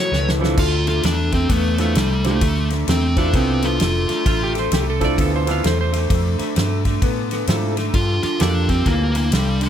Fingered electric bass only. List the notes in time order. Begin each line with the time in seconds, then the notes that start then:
0.12 C#2
0.58 D2
1.04 E2
1.50 E2
1.96 C2
2.41 D2
2.88 E2
3.33 C2
3.80 F1
4.09 muted fingered electric bass stroke
4.26 A1
4.72 C2
5.18 D2
5.65 E2
6.10 F2
6.39 muted fingered electric bass stroke
6.57 G2
7.02 A2
7.48 G#2
7.94 G2
8.23 muted fingered electric bass stroke
8.41 F2
8.86 D2
9.32 C2